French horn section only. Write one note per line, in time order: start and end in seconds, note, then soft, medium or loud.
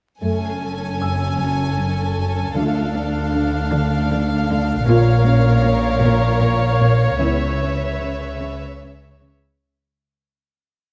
0.22 0.51 A3 soft
0.22 0.51 A4 soft
2.57 2.85 A3 soft
2.57 2.85 F4 soft
4.88 5.15 A#3 medium
4.88 5.15 F4 medium
7.20 7.49 B3 soft
7.20 7.49 E4 soft